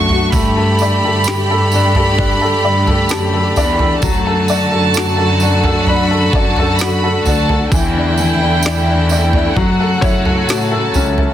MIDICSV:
0, 0, Header, 1, 6, 480
1, 0, Start_track
1, 0, Tempo, 923077
1, 173, Time_signature, 4, 2, 24, 8
1, 5896, End_track
2, 0, Start_track
2, 0, Title_t, "Violin section"
2, 0, Program_c, 0, 48
2, 0, Note_on_c, 0, 85, 93
2, 173, Note_off_c, 0, 85, 0
2, 174, Note_on_c, 0, 83, 96
2, 2073, Note_off_c, 0, 83, 0
2, 2092, Note_on_c, 0, 81, 94
2, 3048, Note_on_c, 0, 83, 87
2, 3053, Note_off_c, 0, 81, 0
2, 3291, Note_off_c, 0, 83, 0
2, 3292, Note_on_c, 0, 81, 83
2, 3524, Note_on_c, 0, 83, 83
2, 3533, Note_off_c, 0, 81, 0
2, 3769, Note_off_c, 0, 83, 0
2, 3774, Note_on_c, 0, 81, 80
2, 4013, Note_on_c, 0, 79, 88
2, 4014, Note_off_c, 0, 81, 0
2, 4952, Note_off_c, 0, 79, 0
2, 4966, Note_on_c, 0, 78, 77
2, 5450, Note_off_c, 0, 78, 0
2, 5454, Note_on_c, 0, 81, 70
2, 5896, Note_off_c, 0, 81, 0
2, 5896, End_track
3, 0, Start_track
3, 0, Title_t, "Felt piano"
3, 0, Program_c, 1, 0
3, 0, Control_c, 1, 64, 127
3, 0, Note_on_c, 1, 50, 68
3, 0, Note_on_c, 1, 57, 53
3, 0, Note_on_c, 1, 62, 52
3, 0, Note_on_c, 1, 66, 55
3, 0, Note_on_c, 1, 69, 49
3, 57, Note_off_c, 1, 66, 0
3, 57, Note_on_c, 1, 66, 51
3, 152, Note_off_c, 1, 50, 0
3, 154, Note_off_c, 1, 69, 0
3, 159, Note_off_c, 1, 62, 0
3, 169, Note_off_c, 1, 57, 0
3, 172, Note_off_c, 1, 66, 0
3, 180, Note_on_c, 1, 57, 63
3, 181, Control_c, 1, 64, 0
3, 280, Control_c, 1, 64, 127
3, 299, Note_on_c, 1, 69, 54
3, 424, Note_on_c, 1, 74, 54
3, 538, Note_off_c, 1, 69, 0
3, 546, Note_on_c, 1, 69, 51
3, 666, Note_on_c, 1, 67, 51
3, 775, Note_off_c, 1, 69, 0
3, 783, Note_on_c, 1, 69, 54
3, 906, Note_on_c, 1, 62, 55
3, 1012, Note_off_c, 1, 69, 0
3, 1020, Note_on_c, 1, 69, 51
3, 1128, Note_off_c, 1, 62, 0
3, 1135, Note_on_c, 1, 62, 68
3, 1248, Note_off_c, 1, 69, 0
3, 1256, Note_on_c, 1, 69, 57
3, 1358, Note_off_c, 1, 74, 0
3, 1376, Note_on_c, 1, 74, 53
3, 1488, Note_off_c, 1, 69, 0
3, 1496, Note_on_c, 1, 69, 55
3, 1599, Note_off_c, 1, 67, 0
3, 1614, Note_on_c, 1, 67, 51
3, 1615, Note_on_c, 1, 81, 64
3, 1728, Note_off_c, 1, 69, 0
3, 1736, Note_on_c, 1, 69, 53
3, 1838, Note_off_c, 1, 81, 0
3, 1851, Note_off_c, 1, 62, 0
3, 1851, Note_off_c, 1, 74, 0
3, 1858, Note_on_c, 1, 74, 68
3, 1859, Note_on_c, 1, 62, 55
3, 1969, Note_off_c, 1, 69, 0
3, 1977, Note_on_c, 1, 69, 55
3, 2076, Note_off_c, 1, 57, 0
3, 2079, Note_off_c, 1, 67, 0
3, 2079, Note_off_c, 1, 74, 0
3, 2089, Note_off_c, 1, 62, 0
3, 2092, Note_off_c, 1, 69, 0
3, 2097, Note_on_c, 1, 54, 70
3, 2100, Control_c, 1, 64, 0
3, 2190, Control_c, 1, 64, 127
3, 2219, Note_on_c, 1, 69, 56
3, 2339, Note_on_c, 1, 74, 56
3, 2446, Note_off_c, 1, 69, 0
3, 2454, Note_on_c, 1, 69, 52
3, 2576, Note_on_c, 1, 66, 55
3, 2685, Note_off_c, 1, 69, 0
3, 2693, Note_on_c, 1, 69, 52
3, 2816, Note_on_c, 1, 62, 58
3, 2930, Note_off_c, 1, 69, 0
3, 2937, Note_on_c, 1, 69, 53
3, 3052, Note_off_c, 1, 62, 0
3, 3060, Note_on_c, 1, 62, 72
3, 3169, Note_off_c, 1, 69, 0
3, 3177, Note_on_c, 1, 69, 54
3, 3275, Note_off_c, 1, 74, 0
3, 3303, Note_on_c, 1, 74, 52
3, 3418, Note_off_c, 1, 69, 0
3, 3425, Note_on_c, 1, 69, 58
3, 3514, Note_off_c, 1, 66, 0
3, 3548, Note_on_c, 1, 66, 54
3, 3651, Note_off_c, 1, 69, 0
3, 3659, Note_on_c, 1, 69, 57
3, 3773, Note_off_c, 1, 62, 0
3, 3780, Note_on_c, 1, 62, 57
3, 3891, Note_off_c, 1, 69, 0
3, 3899, Note_on_c, 1, 69, 50
3, 3995, Note_off_c, 1, 54, 0
3, 3998, Note_off_c, 1, 74, 0
3, 4006, Note_off_c, 1, 66, 0
3, 4010, Note_off_c, 1, 62, 0
3, 4013, Note_off_c, 1, 69, 0
3, 4019, Control_c, 1, 64, 0
3, 4021, Note_on_c, 1, 52, 70
3, 4122, Control_c, 1, 64, 127
3, 4146, Note_on_c, 1, 62, 53
3, 4255, Note_off_c, 1, 52, 0
3, 4262, Note_on_c, 1, 52, 54
3, 4371, Note_off_c, 1, 62, 0
3, 4379, Note_on_c, 1, 62, 51
3, 4500, Note_on_c, 1, 74, 52
3, 4610, Note_off_c, 1, 62, 0
3, 4618, Note_on_c, 1, 62, 54
3, 4733, Note_off_c, 1, 74, 0
3, 4741, Note_on_c, 1, 74, 55
3, 4849, Note_off_c, 1, 62, 0
3, 4857, Note_on_c, 1, 62, 49
3, 4957, Note_off_c, 1, 52, 0
3, 4970, Note_off_c, 1, 74, 0
3, 4972, Note_off_c, 1, 62, 0
3, 4977, Note_on_c, 1, 54, 70
3, 4979, Control_c, 1, 64, 0
3, 5079, Control_c, 1, 64, 127
3, 5098, Note_on_c, 1, 69, 53
3, 5207, Note_on_c, 1, 73, 93
3, 5219, Note_on_c, 1, 64, 70
3, 5326, Note_off_c, 1, 69, 0
3, 5334, Note_on_c, 1, 69, 54
3, 5457, Note_on_c, 1, 66, 53
3, 5565, Note_off_c, 1, 69, 0
3, 5573, Note_on_c, 1, 69, 57
3, 5676, Note_off_c, 1, 64, 0
3, 5697, Note_on_c, 1, 61, 54
3, 5809, Note_off_c, 1, 69, 0
3, 5817, Note_on_c, 1, 69, 50
3, 5896, Note_off_c, 1, 54, 0
3, 5896, Note_off_c, 1, 61, 0
3, 5896, Note_off_c, 1, 66, 0
3, 5896, Note_off_c, 1, 69, 0
3, 5896, Note_off_c, 1, 73, 0
3, 5896, End_track
4, 0, Start_track
4, 0, Title_t, "String section"
4, 0, Program_c, 2, 48
4, 0, Note_on_c, 2, 54, 61
4, 0, Note_on_c, 2, 59, 64
4, 0, Note_on_c, 2, 62, 68
4, 0, Note_on_c, 2, 66, 73
4, 152, Note_off_c, 2, 54, 0
4, 152, Note_off_c, 2, 62, 0
4, 152, Note_off_c, 2, 66, 0
4, 162, Note_off_c, 2, 59, 0
4, 171, Note_on_c, 2, 50, 67
4, 173, Note_on_c, 2, 57, 61
4, 174, Note_on_c, 2, 67, 72
4, 2074, Note_off_c, 2, 67, 0
4, 2096, Note_on_c, 2, 54, 65
4, 2096, Note_on_c, 2, 66, 76
4, 3992, Note_off_c, 2, 57, 0
4, 3995, Note_off_c, 2, 66, 0
4, 3996, Note_off_c, 2, 54, 0
4, 4008, Note_on_c, 2, 57, 68
4, 4010, Note_on_c, 2, 52, 64
4, 4010, Note_on_c, 2, 64, 78
4, 4951, Note_off_c, 2, 50, 0
4, 4962, Note_off_c, 2, 52, 0
4, 4962, Note_off_c, 2, 64, 0
4, 4972, Note_on_c, 2, 49, 69
4, 4975, Note_on_c, 2, 54, 64
4, 4976, Note_on_c, 2, 66, 79
4, 5896, Note_off_c, 2, 49, 0
4, 5896, Note_off_c, 2, 54, 0
4, 5896, Note_off_c, 2, 57, 0
4, 5896, Note_off_c, 2, 66, 0
4, 5896, End_track
5, 0, Start_track
5, 0, Title_t, "Cello section"
5, 0, Program_c, 3, 48
5, 0, Note_on_c, 3, 42, 80
5, 160, Note_off_c, 3, 42, 0
5, 171, Note_on_c, 3, 43, 96
5, 512, Note_off_c, 3, 43, 0
5, 542, Note_on_c, 3, 43, 99
5, 1357, Note_off_c, 3, 43, 0
5, 1381, Note_on_c, 3, 43, 85
5, 1601, Note_off_c, 3, 43, 0
5, 1615, Note_on_c, 3, 42, 86
5, 1838, Note_off_c, 3, 42, 0
5, 1858, Note_on_c, 3, 40, 84
5, 2079, Note_off_c, 3, 40, 0
5, 2094, Note_on_c, 3, 42, 101
5, 2433, Note_off_c, 3, 42, 0
5, 2460, Note_on_c, 3, 42, 93
5, 3276, Note_off_c, 3, 42, 0
5, 3292, Note_on_c, 3, 42, 92
5, 3752, Note_off_c, 3, 42, 0
5, 3768, Note_on_c, 3, 38, 80
5, 3994, Note_off_c, 3, 38, 0
5, 4013, Note_on_c, 3, 40, 98
5, 4353, Note_off_c, 3, 40, 0
5, 4370, Note_on_c, 3, 40, 87
5, 4951, Note_off_c, 3, 40, 0
5, 4976, Note_on_c, 3, 42, 93
5, 5198, Note_off_c, 3, 42, 0
5, 5209, Note_on_c, 3, 42, 85
5, 5434, Note_off_c, 3, 42, 0
5, 5452, Note_on_c, 3, 45, 95
5, 5676, Note_off_c, 3, 45, 0
5, 5691, Note_on_c, 3, 37, 84
5, 5896, Note_off_c, 3, 37, 0
5, 5896, End_track
6, 0, Start_track
6, 0, Title_t, "Drums"
6, 48, Note_on_c, 9, 43, 58
6, 100, Note_off_c, 9, 43, 0
6, 169, Note_on_c, 9, 43, 98
6, 172, Note_on_c, 9, 54, 51
6, 173, Note_on_c, 9, 36, 94
6, 221, Note_off_c, 9, 43, 0
6, 224, Note_off_c, 9, 54, 0
6, 225, Note_off_c, 9, 36, 0
6, 409, Note_on_c, 9, 54, 45
6, 461, Note_off_c, 9, 54, 0
6, 645, Note_on_c, 9, 54, 76
6, 664, Note_on_c, 9, 38, 106
6, 697, Note_off_c, 9, 54, 0
6, 716, Note_off_c, 9, 38, 0
6, 892, Note_on_c, 9, 54, 46
6, 944, Note_off_c, 9, 54, 0
6, 1015, Note_on_c, 9, 43, 67
6, 1067, Note_off_c, 9, 43, 0
6, 1135, Note_on_c, 9, 43, 57
6, 1137, Note_on_c, 9, 36, 77
6, 1187, Note_off_c, 9, 43, 0
6, 1189, Note_off_c, 9, 36, 0
6, 1495, Note_on_c, 9, 43, 61
6, 1547, Note_off_c, 9, 43, 0
6, 1607, Note_on_c, 9, 54, 67
6, 1618, Note_on_c, 9, 38, 112
6, 1659, Note_off_c, 9, 54, 0
6, 1670, Note_off_c, 9, 38, 0
6, 1852, Note_on_c, 9, 54, 44
6, 1856, Note_on_c, 9, 43, 61
6, 1904, Note_off_c, 9, 54, 0
6, 1908, Note_off_c, 9, 43, 0
6, 1972, Note_on_c, 9, 43, 59
6, 2024, Note_off_c, 9, 43, 0
6, 2090, Note_on_c, 9, 54, 53
6, 2093, Note_on_c, 9, 43, 100
6, 2094, Note_on_c, 9, 36, 100
6, 2142, Note_off_c, 9, 54, 0
6, 2145, Note_off_c, 9, 43, 0
6, 2146, Note_off_c, 9, 36, 0
6, 2330, Note_on_c, 9, 54, 47
6, 2382, Note_off_c, 9, 54, 0
6, 2569, Note_on_c, 9, 54, 80
6, 2586, Note_on_c, 9, 38, 100
6, 2621, Note_off_c, 9, 54, 0
6, 2638, Note_off_c, 9, 38, 0
6, 2807, Note_on_c, 9, 54, 45
6, 2859, Note_off_c, 9, 54, 0
6, 2931, Note_on_c, 9, 43, 63
6, 2983, Note_off_c, 9, 43, 0
6, 3051, Note_on_c, 9, 43, 60
6, 3103, Note_off_c, 9, 43, 0
6, 3292, Note_on_c, 9, 36, 91
6, 3344, Note_off_c, 9, 36, 0
6, 3414, Note_on_c, 9, 43, 59
6, 3466, Note_off_c, 9, 43, 0
6, 3529, Note_on_c, 9, 54, 72
6, 3543, Note_on_c, 9, 38, 108
6, 3581, Note_off_c, 9, 54, 0
6, 3595, Note_off_c, 9, 38, 0
6, 3772, Note_on_c, 9, 54, 44
6, 3777, Note_on_c, 9, 43, 65
6, 3824, Note_off_c, 9, 54, 0
6, 3829, Note_off_c, 9, 43, 0
6, 3896, Note_on_c, 9, 43, 58
6, 3948, Note_off_c, 9, 43, 0
6, 4013, Note_on_c, 9, 36, 97
6, 4013, Note_on_c, 9, 54, 53
6, 4016, Note_on_c, 9, 43, 103
6, 4065, Note_off_c, 9, 36, 0
6, 4065, Note_off_c, 9, 54, 0
6, 4068, Note_off_c, 9, 43, 0
6, 4251, Note_on_c, 9, 54, 47
6, 4303, Note_off_c, 9, 54, 0
6, 4486, Note_on_c, 9, 54, 74
6, 4503, Note_on_c, 9, 38, 108
6, 4538, Note_off_c, 9, 54, 0
6, 4555, Note_off_c, 9, 38, 0
6, 4728, Note_on_c, 9, 54, 47
6, 4780, Note_off_c, 9, 54, 0
6, 4853, Note_on_c, 9, 43, 65
6, 4905, Note_off_c, 9, 43, 0
6, 4973, Note_on_c, 9, 43, 57
6, 4974, Note_on_c, 9, 36, 78
6, 5025, Note_off_c, 9, 43, 0
6, 5026, Note_off_c, 9, 36, 0
6, 5212, Note_on_c, 9, 36, 94
6, 5212, Note_on_c, 9, 54, 27
6, 5264, Note_off_c, 9, 36, 0
6, 5264, Note_off_c, 9, 54, 0
6, 5332, Note_on_c, 9, 43, 60
6, 5384, Note_off_c, 9, 43, 0
6, 5453, Note_on_c, 9, 54, 70
6, 5461, Note_on_c, 9, 38, 117
6, 5505, Note_off_c, 9, 54, 0
6, 5513, Note_off_c, 9, 38, 0
6, 5689, Note_on_c, 9, 54, 43
6, 5695, Note_on_c, 9, 43, 66
6, 5741, Note_off_c, 9, 54, 0
6, 5747, Note_off_c, 9, 43, 0
6, 5813, Note_on_c, 9, 43, 60
6, 5865, Note_off_c, 9, 43, 0
6, 5896, End_track
0, 0, End_of_file